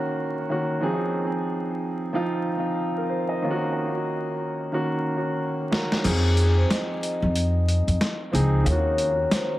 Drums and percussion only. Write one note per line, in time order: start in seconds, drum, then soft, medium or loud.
5.73 snare medium
5.92 snare medium
6.04 closed hi-hat medium
6.04 crash medium
6.37 closed hi-hat medium
6.71 snare loud
6.71 snare medium
6.71 closed hi-hat loud
7.03 closed hi-hat medium
7.36 closed hi-hat loud
7.68 closed hi-hat medium
7.88 closed hi-hat soft
8.01 snare loud
8.01 snare medium
8.01 closed hi-hat medium
8.35 closed hi-hat medium
8.66 closed hi-hat medium
8.98 closed hi-hat medium
9.31 snare loud
9.31 snare medium
9.31 closed hi-hat loud